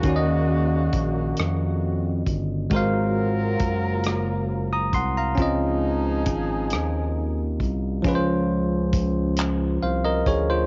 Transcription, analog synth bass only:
\new Staff \with { instrumentName = "Analog synth bass" } { \clef bass \time 6/8 \key des \major \tempo 4. = 45 ees,4 bes,,8 f,4 g,,8 | aes,,4 ges,,4. c,8 | des,4 aes,,8 ees,4 c,8 | des,2 c,8 d,8 | }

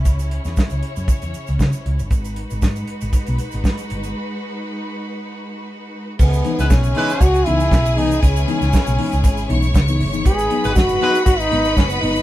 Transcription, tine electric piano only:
\new Staff \with { instrumentName = "Tine electric piano" } { \time 4/4 \key cis \minor \tempo 4 = 118 r1 | r1 | r1 | cis16 r16 <e b dis'>16 <b dis'>16 <b dis'>16 cis16 <e b dis'>16 r8. <e b dis'>16 r8. <e b dis'>16 r16 |
cis16 r16 <e b dis'>16 <b dis'>16 <b dis'>16 cis16 <e b dis'>16 r8. <e b dis'>16 r8 <e b dis'>16 cis16 <e b dis'>16 | <gis, dis>16 r16 <fis b dis'>16 <b dis'>16 <b dis'>16 <gis, dis>16 <fis b dis'>16 r8. <fis b dis'>16 r8. <fis b dis'>16 r16 | }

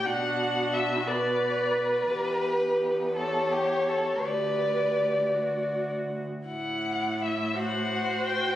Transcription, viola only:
\new Staff \with { instrumentName = "Viola" } { \time 6/8 \key e \minor \tempo 4. = 56 fis'4. b'4. | g'4. g'4. | g'4. fis'4 r8 | e'4. fis'4. | }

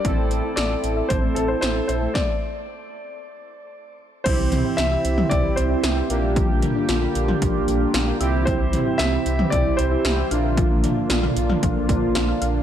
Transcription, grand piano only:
\new Staff \with { instrumentName = "Grand piano" } { \time 4/4 \key c \mixolydian \tempo 4 = 114 d''4 d''4 c''8 a'16 c''16 c''8 c''8 | d''2.~ d''8 r8 | c''4 e''4 d''8 c''4 r8 | r1 |
c''4 e''4 d''8 c''4 r8 | r1 | }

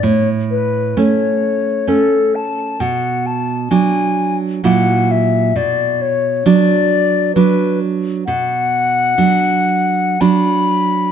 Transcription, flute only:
\new Staff \with { instrumentName = "Flute" } { \time 3/4 \key b \dorian \tempo 4 = 66 cis''8 b'8 cis''4 a'8 a''8 | fis''8 a''8 gis''8 r8 fis''8 e''8 | d''8 cis''8 d''4 b'8 r8 | \key b \minor fis''2 b''4 | }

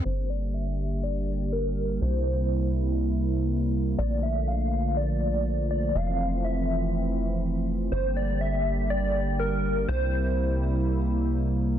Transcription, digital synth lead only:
\new Staff \with { instrumentName = "Digital synth lead" } { \time 4/4 \key g \dorian \tempo 4 = 122 c''8 d''8 e''4 d''4 bes'4 | c''4. r2 r8 | d''8 e''8 f''4 d''4. d''8 | f''4 e''2 r4 |
c''8 d''8 e''4 d''4 bes'4 | c''4. r2 r8 | }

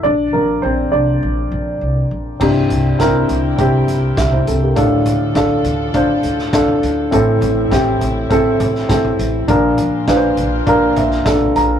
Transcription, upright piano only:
<<
  \new Staff \with { instrumentName = "Upright piano" } { \time 4/4 \key c \mixolydian \tempo 4 = 102 << { <d' d''>8 bes'8 <c' c''>8 <d' d''>4 r4. | r2. <g' e''>16 <e' c''>16 <c' a'>16 <bes g'>16~ | <bes g'>16 r2. r8. | r1 |
r2 r8 e''8 f''8 bes''8 | } \\ { r1 | <c' ees' e' g'>4 <c' e' bes'>4 <c' e' g'>4 r4 | <d' f' a'>4 <d' f' a'>4 <d' f' c''>4 <d' f' a'>4 | <c' e' a'>4 <c' e' g'>4 <c' e' a'>4 <c' e' a'>4 |
<d' f' bes'>4 <d' f' b' c''>4 <d' f' bes'>4 <d' f' a'>4 | } >> }
  \new Staff \with { instrumentName = "Upright piano" } { \clef bass \time 4/4 \key c \mixolydian r8 <f bes d'>4. r2 | g,4. r2 r8 | a,4. r2 r8 | <a, e>4. r2 r8 |
<bes, f>4. r2 r8 | }
>>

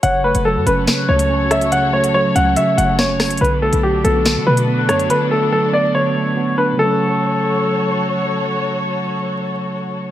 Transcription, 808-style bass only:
\new Staff \with { instrumentName = "808-style bass" } { \clef bass \time 4/4 \key fis \minor \tempo 4 = 142 fis,,8. fis,,8 fis,16 fis,,8 r8 cis,4.~ | cis,4. cis,8 r8 fis,,4. | b,,8. b,,8. b,,8. d16 b,4 fis,8 | r1 |
r1 | r1 | }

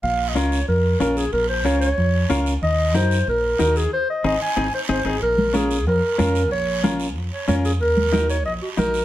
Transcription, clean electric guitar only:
\new Staff \with { instrumentName = "Clean electric guitar" } { \time 4/4 \key bes \minor \tempo 4 = 185 r4 <des' f' bes'>8 r4. <des' f' bes'>8 r8 | r4 <des' f' bes'>8 r4. <des' f' bes'>8 r8 | r4 <ees' ges' bes'>8 r4. <ees' ges' bes'>8 r8 | r4 <c' ees' aes'>8 r8 <c' ees' aes'>8 r8 <c' ees' aes'>8 <c' ees' aes'>8 |
r4 <des' f' bes'>8 r4. <des' f' bes'>8 r8 | r4 <des' f' bes'>8 r4. <des' f' bes'>8 r8 | r4 <ees' ges' bes'>8 r4. <ees' ges' bes'>8 r8 | }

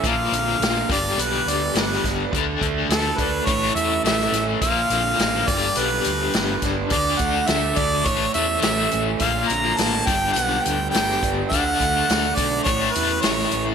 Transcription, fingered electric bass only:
\new Staff \with { instrumentName = "Fingered electric bass" } { \clef bass \time 4/4 \key g \lydian \tempo 4 = 105 bes,,8 bes,,8 bes,,8 g,,8 b,,8 d,8 g,,8 g,,8 | d,8 d,8 d,8 d,8 a,,8 e,8 a,,8 a,,8 | bes,,8 bes,,8 a,,8 g,,8 b,,8 d,8 g,,8 g,,8 | d,8 d,8 d,8 d,8 a,,8 e,8 a,,8 a,,8 |
bes,,8 bes,,8 a,,8 g,,8 b,,8 d,8 g,,8 g,,8 | d,8 d,8 d,8 b,,8 a,,8 e,8 a,,8 a,,8 | }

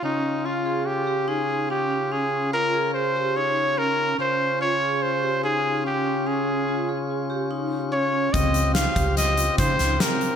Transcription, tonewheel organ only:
\new Staff \with { instrumentName = "Tonewheel organ" } { \time 5/4 \key des \lydian \tempo 4 = 144 <des des' f'>1~ <des des' f'>4~ | <des des' f'>1~ <des des' f'>4 | <des des' f'>1~ <des des' f'>4~ | <des des' f'>1~ <des des' f'>4 |
<des c' f' g'>1~ <des c' f' g'>4 | }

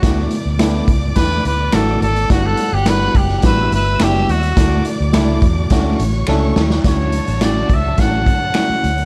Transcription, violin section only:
\new Staff \with { instrumentName = "Violin section" } { \time 4/4 \key d \major \tempo 4 = 106 <d'' d'''>1 | <fis'' fis'''>2 <e'' e'''>2 | <d'' d'''>2~ <d'' d'''>8 <cis'' cis'''>4. | <d' fis' a''>1 | }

